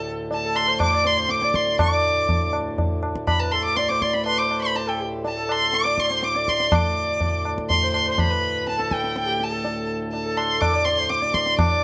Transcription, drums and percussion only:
0.31 tabla tin
0.55 tabla na
0.80 tabla na, tabla ge
1.05 tabla te
1.29 tabla te
1.42 tabla te
1.54 tabla ke
1.67 tabla te
1.79 tabla na, tabla ge
2.29 tabla tin, tabla ge
2.53 tabla na
2.78 tabla tin, tabla ge
3.03 tabla na
3.15 tabla ke
3.27 tabla na, tabla ge
3.77 tabla te
3.90 tabla te
4.02 tabla ke
4.14 tabla te
4.26 tabla na
4.51 tabla na
4.75 tabla tin
5.25 tabla tin
5.49 tabla na
5.73 tabla te
5.85 tabla te
5.98 tabla ke
6.11 tabla te
6.23 tabla te
6.35 tabla te
6.48 tabla ke
6.60 tabla te
6.72 tabla na, tabla ge
7.21 tabla tin, tabla ge
7.45 tabla na
7.58 tabla ke
7.70 tabla tin, tabla ge
7.94 tabla na
8.18 tabla na, tabla ge
8.67 tabla te
8.79 tabla te
8.91 tabla ke
9.04 tabla te
9.16 tabla te
9.40 tabla te
9.65 tabla tin
10.13 tabla tin
10.37 tabla na
10.62 tabla na, tabla ge
10.86 tabla te
11.10 tabla te
11.22 tabla te
11.34 tabla ke
11.46 tabla te
11.59 tabla na, tabla ge

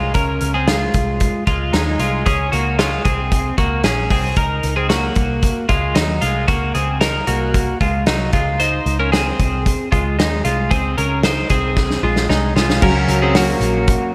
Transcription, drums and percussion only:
0.14 kick, closed hi-hat
0.41 closed hi-hat
0.68 snare, closed hi-hat
0.94 kick, closed hi-hat
1.20 kick, closed hi-hat
1.47 kick, closed hi-hat
1.74 snare, closed hi-hat
2.00 closed hi-hat
2.26 kick, closed hi-hat
2.53 closed hi-hat
2.79 snare, closed hi-hat
3.05 kick, closed hi-hat
3.32 kick, closed hi-hat
3.58 kick, closed hi-hat
3.84 snare, closed hi-hat
4.10 kick, open hi-hat
4.36 kick, closed hi-hat
4.63 closed hi-hat
4.90 snare, closed hi-hat
5.15 kick, closed hi-hat
5.43 kick, closed hi-hat
5.69 kick, closed hi-hat
5.95 snare, closed hi-hat
6.22 closed hi-hat
6.48 kick, closed hi-hat
6.75 closed hi-hat
7.01 snare, closed hi-hat
7.27 closed hi-hat
7.54 kick, closed hi-hat
7.81 kick, closed hi-hat
8.06 snare, closed hi-hat
8.33 kick, closed hi-hat
8.60 closed hi-hat
8.86 closed hi-hat
9.13 snare, closed hi-hat
9.40 kick, closed hi-hat
9.66 kick, closed hi-hat
9.92 kick, closed hi-hat
10.19 snare, closed hi-hat
10.45 closed hi-hat
10.71 kick, closed hi-hat
10.98 closed hi-hat
11.23 snare, closed hi-hat
11.50 kick, closed hi-hat
11.77 kick, snare
11.91 snare
12.16 snare
12.30 snare
12.57 snare
12.70 snare
12.82 kick, crash
13.09 hi-hat pedal, open hi-hat
13.35 snare, hi-hat pedal, open hi-hat
13.61 hi-hat pedal, open hi-hat
13.88 kick, hi-hat pedal, open hi-hat

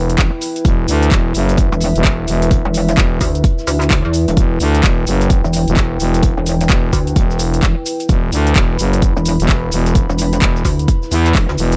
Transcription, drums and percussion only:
0.10 closed hi-hat, shaker
0.18 kick, snare, clap, closed hi-hat, shaker
0.41 closed hi-hat, open hi-hat, shaker
0.56 closed hi-hat, shaker
0.65 kick, closed hi-hat, shaker
0.88 closed hi-hat, open hi-hat, shaker
1.03 closed hi-hat, shaker
1.11 kick, snare, clap, closed hi-hat, shaker
1.34 closed hi-hat, open hi-hat, shaker
1.49 closed hi-hat, shaker
1.57 kick, closed hi-hat, shaker
1.73 shaker
1.80 closed hi-hat, open hi-hat, shaker
1.96 closed hi-hat, shaker
2.04 kick, snare, clap, closed hi-hat, shaker
2.28 snare, closed hi-hat, open hi-hat, shaker
2.42 closed hi-hat, shaker
2.51 kick, closed hi-hat, shaker
2.74 closed hi-hat, open hi-hat, shaker
2.89 closed hi-hat, shaker
2.97 kick, snare, clap, closed hi-hat, shaker
3.21 kick, closed hi-hat, open hi-hat, shaker
3.35 closed hi-hat, shaker
3.44 kick, closed hi-hat, shaker
3.59 snare, shaker
3.67 closed hi-hat, open hi-hat, shaker
3.82 clap, closed hi-hat, shaker
3.90 kick, snare, clap, closed hi-hat, open hi-hat, shaker
4.13 closed hi-hat, open hi-hat, shaker
4.28 closed hi-hat, shaker
4.37 kick, closed hi-hat, shaker
4.60 closed hi-hat, open hi-hat, shaker
4.75 closed hi-hat, shaker
4.83 kick, snare, clap, closed hi-hat, shaker
5.07 closed hi-hat, open hi-hat, shaker
5.21 closed hi-hat, shaker
5.30 kick, closed hi-hat, shaker
5.45 shaker
5.53 closed hi-hat, open hi-hat, shaker
5.68 closed hi-hat, shaker
5.77 kick, snare, clap, closed hi-hat, shaker
6.00 snare, closed hi-hat, open hi-hat, shaker
6.14 closed hi-hat, shaker
6.23 kick, closed hi-hat, shaker
6.46 closed hi-hat, open hi-hat, shaker
6.61 closed hi-hat, shaker
6.69 kick, snare, clap, closed hi-hat, shaker
6.93 kick, closed hi-hat, open hi-hat, shaker
7.07 closed hi-hat, shaker
7.16 kick, closed hi-hat, shaker
7.31 snare, shaker
7.39 closed hi-hat, open hi-hat, shaker
7.54 closed hi-hat, shaker
7.63 kick, snare, clap, closed hi-hat, shaker
7.86 closed hi-hat, open hi-hat, shaker
8.00 closed hi-hat, shaker
8.09 kick, closed hi-hat, shaker
8.32 closed hi-hat, open hi-hat, shaker
8.47 closed hi-hat, shaker
8.56 kick, snare, clap, closed hi-hat, shaker
8.79 closed hi-hat, open hi-hat, shaker
8.93 closed hi-hat, shaker
9.02 kick, closed hi-hat, shaker
9.17 shaker
9.25 closed hi-hat, open hi-hat, shaker
9.40 closed hi-hat, shaker
9.49 kick, snare, clap, closed hi-hat, shaker
9.71 snare, closed hi-hat, open hi-hat, shaker
9.86 closed hi-hat, shaker
9.95 kick, closed hi-hat, shaker
10.10 shaker
10.18 closed hi-hat, open hi-hat, shaker
10.33 closed hi-hat, shaker
10.41 kick, snare, clap, closed hi-hat, shaker
10.56 shaker
10.65 kick, closed hi-hat, open hi-hat, shaker
10.79 closed hi-hat, shaker
10.88 kick, closed hi-hat, shaker
11.03 snare, shaker
11.11 snare, closed hi-hat, open hi-hat, shaker
11.26 clap, closed hi-hat, shaker
11.35 kick, clap, closed hi-hat, open hi-hat, shaker
11.49 snare, closed hi-hat
11.58 open hi-hat, shaker
11.72 closed hi-hat, shaker

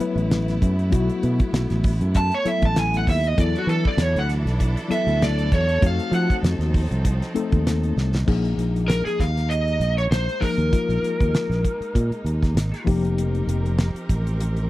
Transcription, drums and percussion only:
0.00 closed hi-hat
0.18 closed hi-hat
0.31 snare, closed hi-hat
0.48 snare, closed hi-hat
0.62 kick, closed hi-hat
0.79 closed hi-hat
0.92 kick, closed hi-hat
1.09 closed hi-hat
1.23 closed hi-hat
1.39 kick, closed hi-hat
1.54 snare, closed hi-hat
1.70 snare, closed hi-hat
1.84 kick, open hi-hat
2.01 closed hi-hat
2.15 kick, closed hi-hat
2.32 closed hi-hat
2.46 closed hi-hat
2.62 kick, closed hi-hat
2.76 snare, closed hi-hat
2.94 closed hi-hat
3.07 kick, open hi-hat
3.24 closed hi-hat
3.38 kick, closed hi-hat
3.55 closed hi-hat
3.69 closed hi-hat
3.85 kick
3.98 snare, closed hi-hat
4.16 closed hi-hat
4.29 snare, closed hi-hat
4.47 snare, closed hi-hat
4.60 kick, closed hi-hat
4.77 closed hi-hat
4.91 closed hi-hat
5.08 closed hi-hat
5.22 snare, closed hi-hat
5.38 closed hi-hat
5.52 kick, closed hi-hat
5.69 closed hi-hat
5.82 kick, closed hi-hat
5.99 closed hi-hat
6.13 closed hi-hat
6.30 kick, closed hi-hat
6.44 snare, closed hi-hat
6.61 snare, closed hi-hat
6.74 kick, open hi-hat
6.91 closed hi-hat
7.05 kick, closed hi-hat
7.22 snare, closed hi-hat
7.36 closed hi-hat
7.52 kick, closed hi-hat
7.67 snare, closed hi-hat
7.84 closed hi-hat
7.98 snare
8.15 snare
8.28 kick, crash
8.45 closed hi-hat
8.59 closed hi-hat
8.76 closed hi-hat
8.90 snare, closed hi-hat
9.07 snare, closed hi-hat
9.20 kick, snare, closed hi-hat
9.37 snare, closed hi-hat
9.51 closed hi-hat
9.68 closed hi-hat
9.81 closed hi-hat
9.98 closed hi-hat
10.12 snare, closed hi-hat
10.29 closed hi-hat
10.42 kick, open hi-hat
10.59 closed hi-hat
10.73 kick, closed hi-hat
10.90 closed hi-hat
11.04 closed hi-hat
11.20 kick, closed hi-hat
11.35 snare, closed hi-hat
11.52 snare, closed hi-hat
11.64 kick, closed hi-hat
11.82 closed hi-hat
11.95 kick, closed hi-hat
12.12 closed hi-hat
12.26 closed hi-hat
12.43 kick, snare, closed hi-hat
12.57 snare, closed hi-hat
12.74 snare, closed hi-hat
12.87 kick, open hi-hat
13.05 closed hi-hat
13.18 closed hi-hat
13.35 closed hi-hat
13.49 closed hi-hat
13.66 closed hi-hat
13.78 snare, closed hi-hat
13.96 closed hi-hat
14.09 kick, closed hi-hat
14.27 closed hi-hat
14.40 closed hi-hat
14.57 closed hi-hat

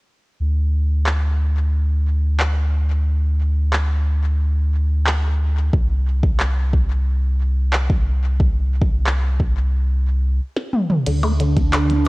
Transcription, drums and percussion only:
1.07 clap
2.40 clap
3.73 clap
5.07 clap
5.73 kick
6.23 kick
6.40 clap
6.73 kick
7.73 clap
7.90 kick
8.40 kick
8.81 kick
9.07 clap
9.40 kick
10.57 snare
10.73 mid tom
10.90 mid tom
11.07 closed hi-hat, crash
11.23 closed hi-hat, percussion blips
11.40 closed hi-hat
11.57 kick, closed hi-hat
11.73 clap, closed hi-hat, percussion blips
11.90 closed hi-hat

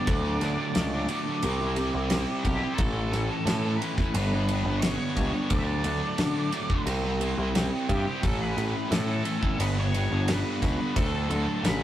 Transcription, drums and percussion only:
0.07 kick, ride
0.41 snare, ride
0.75 snare, ride
1.09 ride
1.43 ride
1.76 ride
2.10 snare, ride
2.45 kick, ride
2.78 kick, ride
3.13 snare, ride
3.47 snare, ride
3.82 ride
3.98 kick, snare
4.15 ride
4.49 ride
4.82 snare, ride
5.17 kick, ride
5.50 kick, ride
5.84 ride
6.18 snare, ride
6.52 ride
6.70 kick
6.87 ride
7.21 ride
7.55 snare, ride
7.89 kick, ride
8.23 kick, ride
8.58 ride
8.92 snare, ride
9.25 ride
9.43 kick
9.60 ride
9.94 ride
10.28 snare, ride
10.62 kick, snare, ride
10.96 kick, ride
11.31 ride
11.65 snare, ride

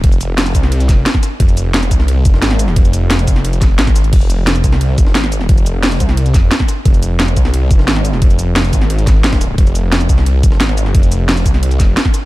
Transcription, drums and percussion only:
0.04 kick, closed hi-hat, ride
0.12 closed hi-hat, shaker
0.21 closed hi-hat, ride, shaker
0.38 snare, closed hi-hat, open hi-hat
0.46 closed hi-hat, ride, shaker
0.55 kick, closed hi-hat, ride, shaker
0.63 snare
0.72 closed hi-hat, ride
0.80 closed hi-hat, ride, shaker
0.89 kick, snare, closed hi-hat, ride, shaker
1.06 snare, closed hi-hat, ride
1.14 kick, snare
1.23 snare, closed hi-hat, ride, shaker
1.40 kick, closed hi-hat, ride
1.49 ride, shaker
1.57 closed hi-hat, ride, shaker
1.74 snare, closed hi-hat, ride
1.83 snare, closed hi-hat, shaker
1.91 kick, closed hi-hat, ride, shaker
2.00 snare
2.08 closed hi-hat, ride
2.25 kick, closed hi-hat, ride, shaker
2.34 snare
2.42 snare, closed hi-hat, ride
2.51 snare, ride
2.59 closed hi-hat, ride, shaker
2.68 snare
2.76 kick, closed hi-hat, ride
2.85 closed hi-hat, shaker
2.93 closed hi-hat, ride, shaker
3.10 snare, closed hi-hat, open hi-hat
3.19 snare, closed hi-hat, ride, shaker
3.28 kick, closed hi-hat, ride, shaker
3.36 snare
3.45 closed hi-hat, ride
3.53 closed hi-hat, ride, shaker
3.62 kick, snare, closed hi-hat, ride, shaker
3.79 snare, closed hi-hat, ride
3.87 kick, snare, shaker
3.96 snare, closed hi-hat, ride, shaker
4.04 closed hi-hat
4.13 kick, closed hi-hat, crash, ride
4.21 ride, shaker
4.30 closed hi-hat, ride, shaker
4.47 snare, closed hi-hat, ride
4.55 snare, closed hi-hat, shaker
4.64 kick, closed hi-hat, ride, shaker
4.72 snare
4.81 closed hi-hat, ride
4.98 kick, closed hi-hat, ride, shaker
5.07 snare
5.15 snare, closed hi-hat, ride
5.24 snare, ride
5.32 closed hi-hat, ride, shaker
5.41 snare
5.49 kick, closed hi-hat, ride
5.58 closed hi-hat, shaker
5.66 closed hi-hat, ride, shaker
5.83 snare, closed hi-hat, open hi-hat
5.92 closed hi-hat, ride, shaker
6.00 kick, closed hi-hat, ride, shaker
6.09 snare
6.17 closed hi-hat, ride
6.26 closed hi-hat, ride, shaker
6.34 kick, snare, closed hi-hat, ride, shaker
6.51 snare, closed hi-hat, ride
6.60 kick, snare
6.68 snare, closed hi-hat, ride, shaker
6.85 kick, closed hi-hat, ride
6.94 ride, shaker
7.03 closed hi-hat, ride, shaker
7.20 snare, closed hi-hat, ride
7.28 snare, closed hi-hat, shaker
7.37 kick, closed hi-hat, ride, shaker
7.45 snare
7.54 closed hi-hat, ride
7.71 kick, closed hi-hat, ride, shaker
7.79 snare
7.88 snare, closed hi-hat, ride
7.96 snare, ride
8.05 closed hi-hat, ride, shaker
8.13 snare
8.22 kick, closed hi-hat, ride
8.30 closed hi-hat, shaker
8.39 closed hi-hat, ride, shaker
8.56 snare, closed hi-hat, open hi-hat
8.64 closed hi-hat, ride, shaker
8.73 kick, closed hi-hat, ride, shaker
8.81 snare
8.90 closed hi-hat, ride
8.99 closed hi-hat, ride, shaker
9.07 kick, snare, closed hi-hat, ride, shaker
9.24 snare, closed hi-hat, ride
9.33 kick, snare, ride
9.41 snare, closed hi-hat, ride, shaker
9.58 kick, closed hi-hat, ride
9.67 ride, shaker
9.75 closed hi-hat, ride, shaker
9.92 snare, closed hi-hat, ride
10.01 snare, closed hi-hat, shaker
10.09 kick, closed hi-hat, ride, shaker
10.18 snare
10.26 closed hi-hat, ride
10.43 kick, closed hi-hat, ride, shaker
10.52 snare
10.60 snare, closed hi-hat, ride
10.69 snare, ride
10.78 closed hi-hat, ride, shaker
10.86 snare
10.95 kick, closed hi-hat, ride
11.03 closed hi-hat, shaker
11.12 closed hi-hat, ride, shaker
11.29 snare, closed hi-hat, open hi-hat
11.37 closed hi-hat, ride, shaker
11.46 kick, closed hi-hat, ride, shaker
11.54 snare
11.63 closed hi-hat, ride
11.71 closed hi-hat, ride, shaker
11.80 kick, snare, closed hi-hat, ride, shaker
11.97 snare, closed hi-hat, ride
12.05 kick, snare
12.14 snare, closed hi-hat, ride, shaker

